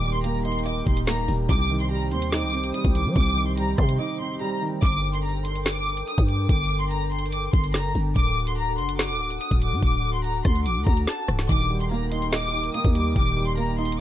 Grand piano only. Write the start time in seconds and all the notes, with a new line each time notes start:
Already playing: D#3 G3 A#3 D#4 D#5
0.03 G3
0.24 A#3
0.45 D#4
0.66 D#5
0.87 D#4
1.08 A#3
1.29 G3
1.49 C3
1.70 D#3
1.91 G3
2.12 C4
2.33 D#4
2.53 C4
2.74 G3
2.95 D#3
3.16 C3
3.36 D#3
3.57 G3
3.78 C4
3.99 D#4
4.20 C4
4.41 G3
4.62 D#3
11.49 D#3
11.70 G3
11.91 A#3
12.12 D#4
12.32 D#5
12.53 D#4
12.74 A#3
12.95 G3
13.16 D#3
13.37 G3
13.57 A#3
13.78 D#4